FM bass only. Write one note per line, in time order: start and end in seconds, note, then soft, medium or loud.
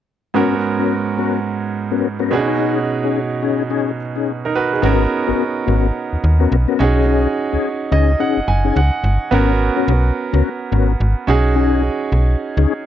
4.83 5.07 G#1 loud
5.29 5.33 G#1 soft
5.68 5.91 G#1 medium
6.13 6.17 D#2 soft
6.24 6.47 D#2 medium
6.52 6.66 B1 loud
6.80 7.27 B1 loud
7.53 7.58 C#2 soft
7.92 8.15 C#2 medium
8.37 8.41 F#1 soft
8.48 8.72 F#1 medium
8.76 8.91 C#2 loud
9.04 9.18 G1 loud
9.32 9.70 G#1 loud
9.88 10.12 B1 loud
10.34 10.43 C#2 medium
10.72 10.96 G#1 medium
11.00 11.15 G#1 loud
11.28 11.90 B1 medium
12.12 12.36 B1 medium
12.57 12.66 C#2 medium